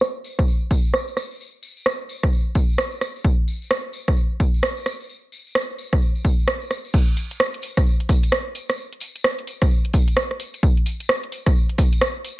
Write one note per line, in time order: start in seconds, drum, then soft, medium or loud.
0.01 cross-stick loud
0.01 tambourine medium
0.24 tambourine medium
0.39 kick loud
0.39 cross-stick medium
0.39 tambourine soft
0.48 tambourine medium
0.71 kick loud
0.71 tambourine medium
0.85 tambourine soft
0.93 cross-stick loud
0.93 tambourine medium
1.08 tambourine soft
1.17 cross-stick medium
1.17 tambourine medium
1.31 tambourine soft
1.40 tambourine medium
1.63 tambourine loud
1.77 tambourine soft
1.86 cross-stick loud
1.86 tambourine medium
2.09 tambourine medium
2.23 kick loud
2.23 cross-stick medium
2.23 tambourine soft
2.33 tambourine medium
2.55 kick loud
2.55 tambourine medium
2.69 tambourine soft
2.78 cross-stick loud
2.78 tambourine medium
2.92 tambourine soft
3.01 cross-stick medium
3.01 tambourine medium
3.16 tambourine soft
3.25 kick loud
3.25 tambourine medium
3.48 tambourine medium
3.62 tambourine soft
3.71 cross-stick loud
3.71 tambourine medium
3.93 tambourine medium
4.07 kick loud
4.07 cross-stick medium
4.07 tambourine soft
4.17 tambourine medium
4.40 kick loud
4.40 tambourine medium
4.54 tambourine soft
4.63 cross-stick loud
4.63 tambourine medium
4.77 tambourine soft
4.86 cross-stick medium
4.86 tambourine loud
5.00 tambourine soft
5.09 tambourine medium
5.32 tambourine medium
5.47 tambourine soft
5.55 cross-stick loud
5.55 tambourine medium
5.78 tambourine loud
5.93 kick loud
5.93 cross-stick medium
5.93 tambourine soft
6.02 tambourine soft
6.15 tambourine soft
6.24 kick loud
6.24 tambourine medium
6.39 tambourine soft
6.47 cross-stick loud
6.47 tambourine soft
6.62 tambourine soft
6.71 cross-stick medium
6.71 tambourine medium
6.85 tambourine soft
6.94 kick loud
6.94 tambourine soft
6.94 crash loud
7.08 closed hi-hat soft
7.17 open hi-hat loud
7.17 tambourine loud
7.31 closed hi-hat medium
7.31 tambourine soft
7.40 cross-stick loud
7.40 tambourine soft
7.54 closed hi-hat medium
7.62 open hi-hat loud
7.62 tambourine medium
7.77 kick loud
7.77 cross-stick medium
7.77 closed hi-hat medium
7.77 tambourine medium
7.87 tambourine soft
8.00 closed hi-hat medium
8.09 kick loud
8.09 cross-stick soft
8.09 open hi-hat loud
8.09 tambourine medium
8.23 closed hi-hat medium
8.23 tambourine medium
8.32 cross-stick loud
8.32 tambourine soft
8.55 open hi-hat loud
8.55 tambourine medium
8.69 cross-stick medium
8.69 open hi-hat medium
8.69 tambourine soft
8.78 tambourine soft
8.93 closed hi-hat soft
9.00 open hi-hat loud
9.00 tambourine loud
9.16 closed hi-hat medium
9.16 tambourine medium
9.24 cross-stick loud
9.24 tambourine soft
9.39 closed hi-hat medium
9.47 open hi-hat loud
9.47 tambourine loud
9.61 kick loud
9.61 cross-stick medium
9.61 closed hi-hat medium
9.61 tambourine medium
9.71 tambourine soft
9.85 closed hi-hat medium
9.93 kick loud
9.93 open hi-hat loud
9.93 tambourine loud
10.08 closed hi-hat medium
10.08 tambourine medium
10.17 cross-stick loud
10.17 tambourine soft
10.31 cross-stick soft
10.40 open hi-hat loud
10.40 tambourine medium
10.54 closed hi-hat medium
10.54 tambourine medium
10.63 kick loud
10.63 tambourine soft
10.77 closed hi-hat soft
10.86 open hi-hat loud
10.86 tambourine loud
11.00 closed hi-hat medium
11.00 tambourine medium
11.09 cross-stick loud
11.09 tambourine soft
11.23 closed hi-hat medium
11.32 open hi-hat loud
11.32 tambourine loud
11.46 kick loud
11.46 cross-stick medium
11.46 closed hi-hat medium
11.46 tambourine medium
11.55 tambourine soft
11.69 closed hi-hat medium
11.78 kick loud
11.78 cross-stick soft
11.78 open hi-hat loud
11.78 tambourine medium
11.93 closed hi-hat medium
11.93 tambourine medium
12.01 cross-stick loud
12.01 tambourine soft
12.25 open hi-hat loud
12.25 tambourine loud